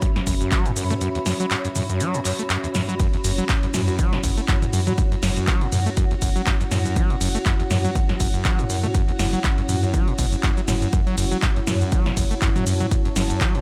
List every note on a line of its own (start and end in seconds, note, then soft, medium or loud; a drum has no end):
0.00 0.07 G2 medium
0.00 13.61 C#4 medium
0.00 2.96 F#4 medium
0.00 13.61 F#4 medium
0.00 13.61 C#5 medium
0.00 2.98 E5 medium
0.00 4.13 B5 medium
0.00 kick loud
0.00 closed hi-hat medium
0.00 shaker soft
0.16 0.20 F#2 medium
0.16 snare medium
0.16 closed hi-hat soft
0.27 0.43 F#1 medium
0.27 0.35 F#2 medium
0.27 kick medium
0.27 open hi-hat loud
0.27 shaker medium
0.41 0.53 F#2 medium
0.41 closed hi-hat soft
0.41 shaker soft
0.52 0.67 F#3 medium
0.52 kick loud
0.52 clap loud
0.52 closed hi-hat loud
0.52 shaker soft
0.66 0.72 A2 medium
0.66 closed hi-hat soft
0.66 mid tom medium
0.66 shaker soft
0.76 0.84 F#2 medium
0.76 0.93 F#2 loud
0.76 open hi-hat medium
0.76 shaker medium
0.90 0.94 A3 medium
0.90 closed hi-hat soft
0.90 mid tom medium
0.90 shaker soft
1.01 1.09 F#2 loud
1.01 closed hi-hat medium
1.01 shaker soft
1.15 1.19 E2 medium
1.15 closed hi-hat soft
1.26 1.34 F#2 medium
1.26 snare medium
1.26 open hi-hat loud
1.26 shaker medium
1.40 1.46 F#3 loud
1.40 closed hi-hat soft
1.40 shaker soft
1.51 1.55 G2 medium
1.51 clap loud
1.51 closed hi-hat loud
1.51 shaker soft
1.65 1.68 F#2 medium
1.65 closed hi-hat soft
1.65 shaker soft
1.76 1.83 F#2 medium
1.76 mid tom medium
1.76 open hi-hat medium
1.76 shaker medium
1.89 2.02 F#2 medium
1.89 closed hi-hat soft
1.89 shaker soft
2.00 2.16 F#3 medium
2.00 closed hi-hat loud
2.00 shaker soft
2.14 2.20 A2 medium
2.14 closed hi-hat soft
2.14 shaker soft
2.25 2.33 F#2 medium
2.25 clap soft
2.25 open hi-hat loud
2.25 shaker medium
2.39 2.43 A3 medium
2.39 closed hi-hat soft
2.39 shaker soft
2.50 2.58 F#2 loud
2.50 clap loud
2.50 closed hi-hat loud
2.50 shaker soft
2.64 2.68 E2 medium
2.64 closed hi-hat soft
2.64 shaker soft
2.75 2.83 F#2 medium
2.75 snare medium
2.75 mid tom loud
2.75 open hi-hat medium
2.75 shaker medium
2.89 2.95 F#3 loud
2.89 closed hi-hat soft
2.89 shaker soft
3.00 3.07 F#2 loud
3.00 13.61 E4 medium
3.00 10.92 F#5 medium
3.00 kick loud
3.00 closed hi-hat medium
3.00 ride medium
3.00 shaker soft
3.13 3.17 E2 medium
3.13 closed hi-hat soft
3.24 3.41 F#1 loud
3.24 3.32 F#2 medium
3.24 open hi-hat loud
3.24 ride medium
3.24 shaker medium
3.38 3.44 F#3 loud
3.38 closed hi-hat soft
3.38 shaker soft
3.49 3.54 G2 medium
3.49 kick loud
3.49 clap loud
3.49 closed hi-hat loud
3.49 ride medium
3.49 shaker soft
3.63 3.67 F#2 medium
3.63 closed hi-hat soft
3.74 3.82 F#2 medium
3.74 3.91 F#2 medium
3.74 snare medium
3.74 mid tom medium
3.74 open hi-hat medium
3.74 ride medium
3.74 shaker medium
3.88 4.00 F#2 medium
3.88 closed hi-hat soft
3.88 shaker soft
3.99 4.14 F#3 medium
3.99 kick loud
3.99 closed hi-hat loud
3.99 ride medium
3.99 shaker soft
4.10 4.19 A2 medium
4.10 12.07 F#5 medium
4.10 snare medium
4.10 closed hi-hat soft
4.24 4.40 F#1 medium
4.24 4.31 F#2 medium
4.24 kick medium
4.24 open hi-hat loud
4.24 ride medium
4.24 shaker medium
4.37 4.41 A3 medium
4.37 closed hi-hat soft
4.37 shaker soft
4.48 4.56 F#2 loud
4.48 kick loud
4.48 clap loud
4.48 closed hi-hat loud
4.48 ride medium
4.48 shaker soft
4.62 4.66 E2 medium
4.62 closed hi-hat soft
4.62 mid tom medium
4.62 shaker soft
4.73 4.81 F#2 medium
4.73 4.90 F#2 loud
4.73 open hi-hat medium
4.73 ride medium
4.73 shaker medium
4.87 4.93 F#3 loud
4.87 closed hi-hat soft
4.87 mid tom medium
4.87 shaker soft
4.98 5.03 G2 medium
4.98 kick loud
4.98 closed hi-hat medium
4.98 ride medium
4.98 shaker soft
5.12 5.16 F#2 medium
5.12 closed hi-hat soft
5.23 5.39 F#1 loud
5.23 5.30 F#2 medium
5.23 snare medium
5.23 open hi-hat loud
5.23 ride medium
5.23 shaker medium
5.37 5.49 F#2 medium
5.37 closed hi-hat soft
5.37 shaker soft
5.47 5.63 F#3 medium
5.47 kick loud
5.47 clap loud
5.47 closed hi-hat loud
5.47 ride medium
5.47 shaker soft
5.61 5.67 A2 medium
5.61 closed hi-hat soft
5.72 5.89 F#2 medium
5.72 5.80 F#2 medium
5.72 mid tom loud
5.72 open hi-hat loud
5.72 ride medium
5.72 shaker medium
5.86 5.90 A3 medium
5.86 closed hi-hat soft
5.86 shaker soft
5.97 6.05 F#2 loud
5.97 kick loud
5.97 closed hi-hat medium
5.97 ride medium
5.97 shaker soft
6.11 6.15 E2 medium
6.11 closed hi-hat soft
6.22 6.38 F#1 medium
6.22 6.30 F#2 medium
6.22 kick medium
6.22 open hi-hat loud
6.22 ride medium
6.22 shaker medium
6.36 6.42 F#3 loud
6.36 closed hi-hat soft
6.36 shaker soft
6.47 6.51 G2 medium
6.47 kick loud
6.47 clap loud
6.47 closed hi-hat loud
6.47 ride medium
6.47 shaker soft
6.61 6.64 F#2 medium
6.61 closed hi-hat soft
6.61 shaker soft
6.71 6.88 F#2 loud
6.71 6.79 F#2 medium
6.71 snare medium
6.71 mid tom loud
6.71 open hi-hat loud
6.71 ride medium
6.71 shaker medium
6.85 6.98 F#2 medium
6.85 closed hi-hat soft
6.85 shaker soft
6.96 7.12 F#3 medium
6.96 kick loud
6.96 closed hi-hat medium
6.96 ride medium
6.96 shaker soft
7.10 7.16 A2 medium
7.10 closed hi-hat soft
7.21 7.38 F#1 medium
7.21 7.29 F#2 medium
7.21 open hi-hat loud
7.21 ride medium
7.21 shaker medium
7.35 7.38 A3 medium
7.35 closed hi-hat soft
7.35 shaker soft
7.46 7.53 F#2 loud
7.46 kick loud
7.46 clap loud
7.46 closed hi-hat medium
7.46 ride medium
7.46 shaker soft
7.60 7.63 E2 medium
7.60 closed hi-hat soft
7.71 7.87 F#2 medium
7.71 7.78 F#2 medium
7.71 snare medium
7.71 mid tom loud
7.71 open hi-hat loud
7.71 ride medium
7.71 shaker medium
7.85 7.91 F#3 loud
7.85 closed hi-hat soft
7.85 shaker soft
7.95 8.00 G2 medium
7.95 kick loud
7.95 closed hi-hat medium
7.95 ride medium
7.95 shaker soft
8.09 8.13 F#2 medium
8.09 snare medium
8.09 closed hi-hat soft
8.20 8.37 F#1 medium
8.20 8.28 F#2 medium
8.20 kick medium
8.20 open hi-hat loud
8.20 ride medium
8.20 shaker medium
8.34 8.46 F#2 medium
8.34 closed hi-hat soft
8.34 shaker soft
8.45 8.60 F#3 medium
8.45 kick loud
8.45 clap loud
8.45 closed hi-hat loud
8.45 ride medium
8.45 shaker soft
8.59 8.65 A2 medium
8.59 closed hi-hat soft
8.59 mid tom loud
8.59 shaker soft
8.70 8.77 F#2 medium
8.70 8.86 F#2 loud
8.70 open hi-hat loud
8.70 ride medium
8.70 shaker medium
8.84 8.87 A3 medium
8.84 closed hi-hat soft
8.84 mid tom medium
8.84 shaker soft
8.94 9.02 F#2 loud
8.94 kick loud
8.94 closed hi-hat medium
8.94 ride medium
8.94 shaker soft
9.08 9.12 E2 medium
9.08 closed hi-hat soft
9.19 9.36 F#1 loud
9.19 9.27 F#2 medium
9.19 snare medium
9.19 open hi-hat loud
9.19 ride medium
9.19 shaker medium
9.33 9.39 F#3 loud
9.33 closed hi-hat soft
9.33 shaker soft
9.44 9.49 G2 medium
9.44 kick loud
9.44 clap loud
9.44 closed hi-hat medium
9.44 ride medium
9.44 shaker soft
9.58 9.62 F#2 medium
9.58 closed hi-hat soft
9.69 9.85 F#2 medium
9.69 9.77 F#2 medium
9.69 mid tom loud
9.69 open hi-hat loud
9.69 ride medium
9.69 shaker medium
9.83 9.95 F#2 medium
9.83 closed hi-hat soft
9.83 shaker soft
9.94 10.09 F#3 medium
9.94 kick loud
9.94 closed hi-hat medium
9.94 ride medium
9.94 shaker soft
10.08 10.14 A2 medium
10.08 closed hi-hat soft
10.19 10.35 F#1 loud
10.19 10.26 B2 loud
10.19 kick medium
10.19 open hi-hat loud
10.19 ride medium
10.19 shaker medium
10.32 10.36 F#2 medium
10.32 closed hi-hat soft
10.32 shaker soft
10.43 10.51 F#2 medium
10.43 kick loud
10.43 clap loud
10.43 closed hi-hat medium
10.43 ride medium
10.43 shaker soft
10.57 10.61 F#3 medium
10.57 closed hi-hat soft
10.57 shaker soft
10.68 10.85 F#1 medium
10.68 10.73 F#2 loud
10.68 snare medium
10.68 mid tom loud
10.68 open hi-hat loud
10.68 ride medium
10.68 shaker medium
10.82 10.88 F#2 medium
10.82 closed hi-hat soft
10.82 shaker soft
10.93 11.01 F#2 loud
10.93 13.61 C#5 medium
10.93 kick loud
10.93 closed hi-hat medium
10.93 ride medium
10.93 shaker soft
11.07 11.16 F#3 loud
11.07 closed hi-hat soft
11.18 11.34 F#1 loud
11.18 11.25 F#2 medium
11.18 open hi-hat loud
11.18 ride medium
11.18 shaker medium
11.32 11.38 F#3 loud
11.32 closed hi-hat soft
11.32 shaker soft
11.42 11.47 G2 medium
11.42 kick loud
11.42 clap loud
11.42 closed hi-hat medium
11.42 ride medium
11.42 shaker soft
11.56 11.60 F#2 medium
11.56 closed hi-hat soft
11.67 11.75 F#2 medium
11.67 11.84 F#2 medium
11.67 snare medium
11.67 mid tom medium
11.67 open hi-hat medium
11.67 ride medium
11.67 shaker medium
11.81 11.94 F#2 medium
11.81 closed hi-hat soft
11.81 shaker soft
11.92 12.08 F#3 medium
11.92 kick loud
11.92 closed hi-hat medium
11.92 ride medium
11.92 shaker soft
12.04 12.12 A2 medium
12.04 13.61 A5 medium
12.04 snare medium
12.04 closed hi-hat soft
12.17 12.33 F#1 medium
12.17 12.25 F#2 medium
12.17 kick medium
12.17 open hi-hat loud
12.17 ride medium
12.17 shaker medium
12.31 12.34 A3 medium
12.31 closed hi-hat soft
12.31 shaker soft
12.42 12.49 F#2 loud
12.42 kick loud
12.42 clap loud
12.42 closed hi-hat medium
12.42 ride medium
12.42 shaker soft
12.56 12.65 F#3 loud
12.56 closed hi-hat soft
12.56 mid tom medium
12.56 shaker soft
12.67 12.74 F#2 medium
12.67 12.83 F#2 loud
12.67 open hi-hat medium
12.67 ride medium
12.67 shaker medium
12.80 12.86 F#3 loud
12.80 closed hi-hat soft
12.80 mid tom medium
12.80 shaker soft
12.91 12.96 G2 medium
12.91 kick loud
12.91 closed hi-hat medium
12.91 ride medium
12.91 shaker soft
13.05 13.09 F#2 medium
13.05 closed hi-hat soft
13.16 13.33 F#1 loud
13.16 13.24 F#2 medium
13.16 snare medium
13.16 open hi-hat loud
13.16 ride medium
13.16 shaker medium
13.30 13.42 F#2 medium
13.30 closed hi-hat soft
13.30 shaker soft
13.41 13.56 F#3 medium
13.41 kick loud
13.41 clap loud
13.41 closed hi-hat medium
13.41 ride medium
13.41 shaker soft
13.55 13.61 A2 medium
13.55 closed hi-hat soft